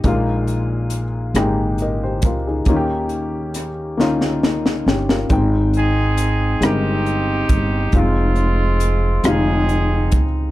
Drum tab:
HH |x-x-x-x-x-x-|x-x-x-------|x-x-x-x-x-x-|x-x-x-x-x-x-|
SD |------r-----|----r-oooooo|------r-----|------r-----|
BD |o---------o-|o-----------|o---------o-|o---------o-|